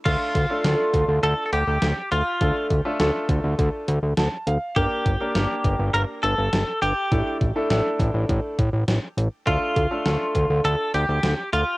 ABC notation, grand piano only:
X:1
M:4/4
L:1/16
Q:1/4=102
K:Dm
V:1 name="Grand piano"
[A,DFA]2 z [A,DFA] [A,DFA]6 z6 | [A,DFA]2 z [A,DFA] [A,DFA]6 z2 a2 f2 | [B,DGB]2 z [B,DGB] [B,DGB]6 z6 | [A,DEA]2 z [A,DEA] [A,DEA]6 z6 |
[A,DFA]2 z [A,DFA] [A,DFA]6 z6 |]